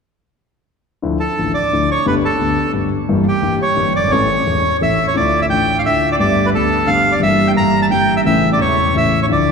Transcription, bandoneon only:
1.20 A4
1.54 D5
1.91 C#5
2.07 B4
2.25 A4
3.28 G4
3.62 C#5
3.96 D5
4.11 C#5
4.83 E5
5.08 C#5
5.17 D5
5.42 E5
5.50 G5
5.79 F5
5.86 E5
6.12 D5
6.20 D5
6.46 B4
6.55 A4
6.87 F5
7.12 D5
7.23 E5
7.48 G5
7.57 A#5
7.82 A5
7.91 G5
8.17 E5
8.26 E5
8.53 D5
8.61 C#5
8.97 E5
9.23 C#5
9.32 D5

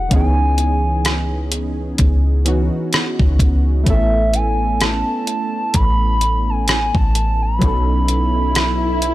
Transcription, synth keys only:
0.09 D#3 B3 C#4
0.14 E3 D#4 G#4
2.45 E3 B3 C#4 D#4 F#4
3.84 A3 B3 C#4
3.89 E4 A4
7.59 F#3 B3 C#4
7.63 D#4 A4

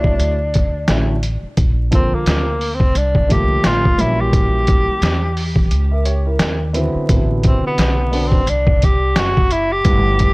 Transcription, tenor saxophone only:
Already playing: D4
1.94 C4
2.15 A#3
2.75 C4
2.98 D4
3.32 G4
3.66 F4
4.01 E4
4.21 G4
7.47 C4
7.67 B3
8.27 C4
8.49 D4
8.84 G4
9.18 F#4
9.52 E4
9.73 G4

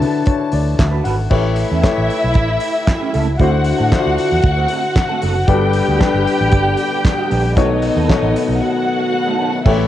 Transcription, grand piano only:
Already playing: D3 D4 E4 F#4 C#5 D5
0.01 B4
0.27 C#5
0.53 D5
0.79 E5
1.04 F#5
1.30 A3 E4 G4 B4 C#5
1.82 A3 E4 G4 B4 C#5
3.39 D3 D4 E4 F#4 C5
3.91 D3 D4 E4 F4 C5
3.99 F#4
5.48 G3 D4 G4 A4 B4
5.99 G3 D4 G4 A4 B4
7.56 B2 B3 D#4 A4 C#5
8.08 B2 B3 D#4 A4 C#5
9.65 A3 E4 G4 B4 C#5

